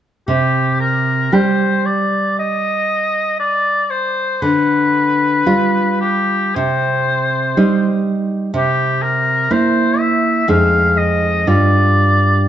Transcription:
0, 0, Header, 1, 3, 480
1, 0, Start_track
1, 0, Key_signature, -3, "minor"
1, 0, Tempo, 1047120
1, 125, Time_signature, 4, 2, 24, 8
1, 1084, Tempo, 1022147
1, 2044, Tempo, 1075269
1, 3004, Tempo, 1013514
1, 3484, Tempo, 975610
1, 5404, Tempo, 1056338
1, 5862, End_track
2, 0, Start_track
2, 0, Title_t, "Oboe"
2, 0, Program_c, 0, 68
2, 127, Note_on_c, 0, 67, 49
2, 350, Note_off_c, 0, 67, 0
2, 368, Note_on_c, 0, 70, 47
2, 610, Note_on_c, 0, 72, 44
2, 617, Note_off_c, 0, 70, 0
2, 852, Note_on_c, 0, 74, 50
2, 859, Note_off_c, 0, 72, 0
2, 1089, Note_off_c, 0, 74, 0
2, 1095, Note_on_c, 0, 75, 57
2, 1559, Note_off_c, 0, 75, 0
2, 1569, Note_on_c, 0, 74, 60
2, 1807, Note_on_c, 0, 72, 58
2, 1814, Note_off_c, 0, 74, 0
2, 2046, Note_on_c, 0, 71, 61
2, 2053, Note_off_c, 0, 72, 0
2, 2754, Note_off_c, 0, 71, 0
2, 2757, Note_on_c, 0, 67, 52
2, 3001, Note_on_c, 0, 72, 60
2, 3008, Note_off_c, 0, 67, 0
2, 3722, Note_off_c, 0, 72, 0
2, 3974, Note_on_c, 0, 67, 60
2, 4199, Note_on_c, 0, 70, 60
2, 4206, Note_off_c, 0, 67, 0
2, 4439, Note_on_c, 0, 72, 64
2, 4446, Note_off_c, 0, 70, 0
2, 4674, Note_on_c, 0, 76, 60
2, 4681, Note_off_c, 0, 72, 0
2, 4915, Note_on_c, 0, 77, 67
2, 4923, Note_off_c, 0, 76, 0
2, 5156, Note_on_c, 0, 75, 56
2, 5164, Note_off_c, 0, 77, 0
2, 5406, Note_on_c, 0, 74, 61
2, 5413, Note_off_c, 0, 75, 0
2, 5862, Note_off_c, 0, 74, 0
2, 5862, End_track
3, 0, Start_track
3, 0, Title_t, "Nylon-string guitar"
3, 0, Program_c, 1, 24
3, 128, Note_on_c, 1, 48, 39
3, 591, Note_off_c, 1, 48, 0
3, 607, Note_on_c, 1, 55, 29
3, 609, Note_on_c, 1, 67, 32
3, 2028, Note_off_c, 1, 55, 0
3, 2029, Note_off_c, 1, 67, 0
3, 2049, Note_on_c, 1, 50, 45
3, 2502, Note_off_c, 1, 50, 0
3, 2514, Note_on_c, 1, 55, 32
3, 2516, Note_on_c, 1, 65, 37
3, 2987, Note_off_c, 1, 55, 0
3, 2988, Note_off_c, 1, 65, 0
3, 3005, Note_on_c, 1, 48, 50
3, 3470, Note_off_c, 1, 48, 0
3, 3483, Note_on_c, 1, 55, 36
3, 3485, Note_on_c, 1, 63, 39
3, 3940, Note_off_c, 1, 55, 0
3, 3941, Note_off_c, 1, 63, 0
3, 3958, Note_on_c, 1, 48, 52
3, 4420, Note_off_c, 1, 48, 0
3, 4434, Note_on_c, 1, 58, 37
3, 4436, Note_on_c, 1, 64, 41
3, 4896, Note_off_c, 1, 58, 0
3, 4896, Note_off_c, 1, 64, 0
3, 4914, Note_on_c, 1, 41, 47
3, 4917, Note_on_c, 1, 56, 36
3, 4918, Note_on_c, 1, 63, 34
3, 5385, Note_off_c, 1, 56, 0
3, 5386, Note_off_c, 1, 63, 0
3, 5389, Note_off_c, 1, 41, 0
3, 5402, Note_on_c, 1, 55, 34
3, 5403, Note_on_c, 1, 43, 43
3, 5405, Note_on_c, 1, 65, 34
3, 5862, Note_off_c, 1, 43, 0
3, 5862, Note_off_c, 1, 55, 0
3, 5862, Note_off_c, 1, 65, 0
3, 5862, End_track
0, 0, End_of_file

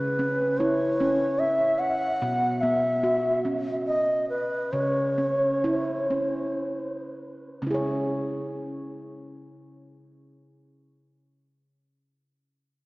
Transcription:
0, 0, Header, 1, 3, 480
1, 0, Start_track
1, 0, Key_signature, 4, "minor"
1, 0, Tempo, 815217
1, 1304, Time_signature, 3, 2, 24, 8
1, 2275, Tempo, 883652
1, 3235, Tempo, 960000
1, 3715, Tempo, 1032702
1, 4195, Tempo, 1075269
1, 6529, End_track
2, 0, Start_track
2, 0, Title_t, "Bansuri"
2, 0, Program_c, 0, 73
2, 0, Note_on_c, 0, 71, 66
2, 344, Note_on_c, 0, 73, 80
2, 352, Note_off_c, 0, 71, 0
2, 819, Note_on_c, 0, 76, 78
2, 828, Note_off_c, 0, 73, 0
2, 1054, Note_on_c, 0, 78, 93
2, 1063, Note_off_c, 0, 76, 0
2, 1537, Note_on_c, 0, 76, 80
2, 1546, Note_off_c, 0, 78, 0
2, 2024, Note_off_c, 0, 76, 0
2, 2277, Note_on_c, 0, 75, 70
2, 2491, Note_off_c, 0, 75, 0
2, 2509, Note_on_c, 0, 71, 69
2, 2742, Note_on_c, 0, 73, 69
2, 2750, Note_off_c, 0, 71, 0
2, 3714, Note_off_c, 0, 73, 0
2, 6529, End_track
3, 0, Start_track
3, 0, Title_t, "Handpan"
3, 0, Program_c, 1, 114
3, 0, Note_on_c, 1, 49, 83
3, 112, Note_on_c, 1, 61, 64
3, 351, Note_off_c, 1, 61, 0
3, 353, Note_on_c, 1, 64, 63
3, 590, Note_on_c, 1, 61, 63
3, 591, Note_off_c, 1, 64, 0
3, 654, Note_off_c, 1, 49, 0
3, 1066, Note_off_c, 1, 61, 0
3, 1306, Note_on_c, 1, 47, 92
3, 1548, Note_on_c, 1, 59, 64
3, 1786, Note_off_c, 1, 59, 0
3, 1786, Note_on_c, 1, 66, 61
3, 2028, Note_off_c, 1, 66, 0
3, 2032, Note_on_c, 1, 61, 55
3, 2097, Note_off_c, 1, 47, 0
3, 2508, Note_off_c, 1, 61, 0
3, 2744, Note_on_c, 1, 49, 79
3, 2989, Note_on_c, 1, 61, 57
3, 3236, Note_off_c, 1, 61, 0
3, 3240, Note_on_c, 1, 64, 60
3, 3472, Note_on_c, 1, 61, 52
3, 3473, Note_off_c, 1, 64, 0
3, 3544, Note_off_c, 1, 49, 0
3, 3950, Note_off_c, 1, 61, 0
3, 4193, Note_on_c, 1, 49, 68
3, 4195, Note_on_c, 1, 61, 49
3, 4214, Note_on_c, 1, 64, 50
3, 4232, Note_on_c, 1, 68, 50
3, 4249, Note_on_c, 1, 73, 48
3, 5757, Note_off_c, 1, 49, 0
3, 5759, Note_off_c, 1, 61, 0
3, 5778, Note_off_c, 1, 64, 0
3, 5796, Note_off_c, 1, 68, 0
3, 5812, Note_off_c, 1, 73, 0
3, 6529, End_track
0, 0, End_of_file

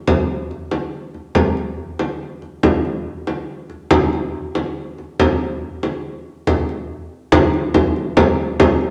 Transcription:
0, 0, Header, 1, 2, 480
1, 0, Start_track
1, 0, Tempo, 425834
1, 80, Time_signature, 6, 3, 24, 8
1, 10035, End_track
2, 0, Start_track
2, 0, Title_t, "Frame drum"
2, 84, Note_on_c, 9, 64, 70
2, 197, Note_off_c, 9, 64, 0
2, 573, Note_on_c, 9, 64, 25
2, 685, Note_off_c, 9, 64, 0
2, 804, Note_on_c, 9, 64, 55
2, 917, Note_off_c, 9, 64, 0
2, 1289, Note_on_c, 9, 64, 25
2, 1402, Note_off_c, 9, 64, 0
2, 1521, Note_on_c, 9, 64, 77
2, 1634, Note_off_c, 9, 64, 0
2, 1771, Note_on_c, 9, 64, 26
2, 1884, Note_off_c, 9, 64, 0
2, 2247, Note_on_c, 9, 64, 55
2, 2360, Note_off_c, 9, 64, 0
2, 2729, Note_on_c, 9, 64, 25
2, 2842, Note_off_c, 9, 64, 0
2, 2967, Note_on_c, 9, 64, 72
2, 3080, Note_off_c, 9, 64, 0
2, 3212, Note_on_c, 9, 64, 30
2, 3324, Note_off_c, 9, 64, 0
2, 3688, Note_on_c, 9, 64, 53
2, 3801, Note_off_c, 9, 64, 0
2, 4166, Note_on_c, 9, 64, 29
2, 4279, Note_off_c, 9, 64, 0
2, 4402, Note_on_c, 9, 64, 86
2, 4515, Note_off_c, 9, 64, 0
2, 4654, Note_on_c, 9, 64, 30
2, 4766, Note_off_c, 9, 64, 0
2, 5131, Note_on_c, 9, 64, 61
2, 5244, Note_off_c, 9, 64, 0
2, 5618, Note_on_c, 9, 64, 26
2, 5730, Note_off_c, 9, 64, 0
2, 5856, Note_on_c, 9, 64, 75
2, 5969, Note_off_c, 9, 64, 0
2, 6573, Note_on_c, 9, 64, 52
2, 6686, Note_off_c, 9, 64, 0
2, 7295, Note_on_c, 9, 64, 71
2, 7408, Note_off_c, 9, 64, 0
2, 7540, Note_on_c, 9, 64, 31
2, 7652, Note_off_c, 9, 64, 0
2, 8252, Note_on_c, 9, 64, 97
2, 8365, Note_off_c, 9, 64, 0
2, 8495, Note_on_c, 9, 64, 27
2, 8607, Note_off_c, 9, 64, 0
2, 8729, Note_on_c, 9, 64, 72
2, 8842, Note_off_c, 9, 64, 0
2, 8974, Note_on_c, 9, 64, 27
2, 9087, Note_off_c, 9, 64, 0
2, 9207, Note_on_c, 9, 64, 85
2, 9320, Note_off_c, 9, 64, 0
2, 9690, Note_on_c, 9, 64, 84
2, 9803, Note_off_c, 9, 64, 0
2, 9930, Note_on_c, 9, 64, 26
2, 10035, Note_off_c, 9, 64, 0
2, 10035, End_track
0, 0, End_of_file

